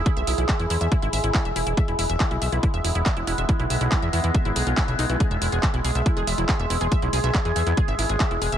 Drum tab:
HH |xxoxxxoxxxoxxxox|xxoxxxoxxxoxxxox|xxoxxxoxxxoxxxox|xxoxxxoxxxoxxxox|
CP |----x-------x---|----x-------x---|----x-------x---|----x-------x---|
BD |o---o---o---o---|o---o---o---o---|o---o---o---o---|o---o---o---o---|

HH |xxoxxxoxxxoxxxox|
CP |----x-------x---|
BD |o---o---o---o---|